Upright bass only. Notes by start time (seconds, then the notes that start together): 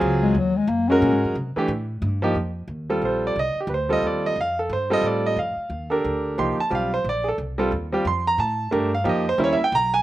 0.01 C#2
0.35 D#2
0.67 F#2
1.02 A#2
1.13 G#2
1.25 F#2
1.35 C3
1.57 muted upright bass stroke
1.68 A2
2.02 G2
2.35 F2
2.68 D#2
3.02 A#1
3.36 C2
3.56 muted upright bass stroke
3.67 D2
4.02 D#2
4.36 F2
4.69 G2
5.01 A2
5.36 F2
5.57 muted upright bass stroke
5.70 D#2
6.04 D2
6.38 C2
6.59 muted upright bass stroke
6.71 B1
7.04 A#1
7.38 C2
7.72 D#2
8.05 F2
8.38 A2
8.72 G2
9.05 F2
9.38 D#2
9.60 muted upright bass stroke
9.72 B1